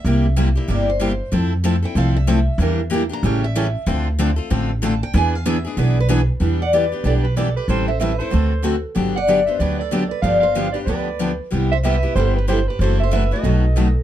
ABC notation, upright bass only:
X:1
M:4/4
L:1/8
Q:"Swing" 1/4=188
K:Ephr
V:1 name="Upright bass" clef=bass
C,,4 G,,,4 | F,,4 C,,4 | E,,4 A,,,4 | D,,4 A,,,4 |
E,,4 B,,,4 | [K:Em] E,,4 B,,,4 | A,,,4 D,,4 | G,,,4 D,,4 |
G,,,4 D,,4 | C,,4 G,,,4 | F,,,4 B,,,4 |]